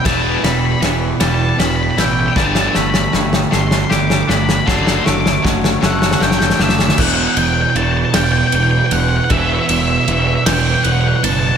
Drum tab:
CC |------------------------|------------------------|------------------------|x-----------------------|
RD |x---x---x---x---x---x---|------------------------|------------------------|----x---x---x---x---x---|
SD |o---o---o---o---o---o---|o-o-o-o-o-o-o-o-o-o-o-o-|o-o-o-o-o-o-o-oooooooooo|------------o-----------|
BD |o-----------------------|o-----------------------|o-------o---------------|o-----------------------|

CC |------------------------|
RD |x---x---x---x---x---x---|
SD |------------o-----------|
BD |o-----------------------|